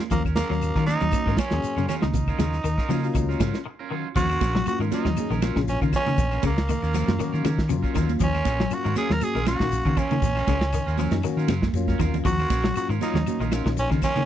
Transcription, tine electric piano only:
0.10 F#3 A#3 C#4 F4
0.35 F#3 A#3 C#4 G#4
0.49 F#3 A#3 C#4 F#4
1.12 F#3 A#3 C#4 F#4
1.51 F#3 A#3 C#4 G#4
2.89 F#3 A#3 C#4 F4
3.04 F#3 A#3 C#4 F4
4.67 F#3 A#3 C#4 F4
4.91 F#3 A#3 C#4 F4
5.18 F#3 A#3 C#4 G#4
5.42 F#3 A#3 C#4 F4
7.07 F#3 A#3 C#4 F4
7.18 F#3 A#3 C#4 F#4
7.69 F#3 A#3 C#4 F4
8.71 F#3 A#3 C#4 F4
8.96 F#3 A#3 C#4 G#4
9.21 F#3 A#3 C#4 F#4
9.46 F#3 A#3 C#4 F5
11.12 F#3 A#3 C#4 D#4
11.24 F#3 A#3 C#4 F#4
11.75 F#3 A#3 C#4 F4
12.75 F#3 A#3 C#4 F4
13.01 F#3 A#3 C#4 F4
13.27 F#3 A#3 C#4 F#4
13.52 F#3 A#3 C#4 D#4

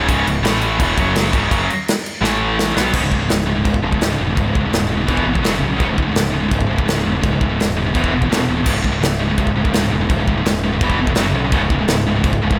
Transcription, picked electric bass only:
0.09 C#1
0.26 C#1
0.43 A1
0.80 E1
0.97 F#1
1.33 C#1
1.51 F#1
2.21 A1
2.76 B1
2.93 C#1
3.12 C#1
3.31 C#1
3.65 C#1
3.82 C#1
4.01 C#1
4.19 E1
4.37 C#1
4.55 C#1
4.73 D#1
5.08 E1
5.26 G#1
5.44 F#1
5.62 B1
5.80 C#1
5.98 C#1
6.15 C#1
6.51 C#1
6.69 C#1
6.87 C#1
7.06 E1
7.23 C#1
7.41 C#1
7.61 D#1
7.95 E1
8.12 E1
8.30 E1
8.49 D#1
8.66 C#1
8.85 C#1
9.01 C#1
9.38 C#1
9.56 C#1
9.74 C#1
9.91 E1
10.09 C#1
10.27 C#1
10.45 D#1
10.81 E1
10.98 F1
11.16 F#1
11.33 B1
11.52 C#1
11.70 C#1
11.87 C#1
12.23 C#1
12.43 C#1

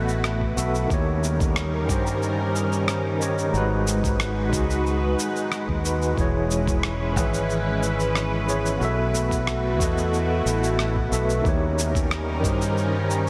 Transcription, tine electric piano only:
Already playing: B3 F#4 A4 D#5 E5
0.56 B3 F#4 A4 E5
0.87 D#3 D#4
0.91 G4 C#5
1.86 D#3 D#4
1.91 G4 C5
3.19 D#3 D#4 G4 C#5
3.50 G#3 D#4
3.55 F#4 B4
4.49 G#3 D#4
4.54 F#4 G#4
5.83 G#3 D#4 F#4 B4
6.14 E3 E4
6.18 G#4 C#5
7.13 E3 E4
7.18 G#4 B4
8.46 E3 E4 G#4 C#5
8.78 B3 F#4
8.82 A4 E5
9.77 B3 F#4
9.81 A4 D#5
11.10 B3 F#4 A4 E5
11.42 D#3 D#4
11.46 G4 C#5
12.40 D#3 D#4
12.45 G4 C5

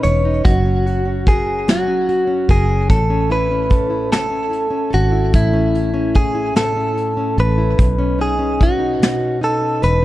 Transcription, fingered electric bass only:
0.05 E1
0.45 F#1
2.49 F#1
2.90 A1
4.94 G#1
5.34 A1
7.38 A1
7.79 B1
9.83 E1

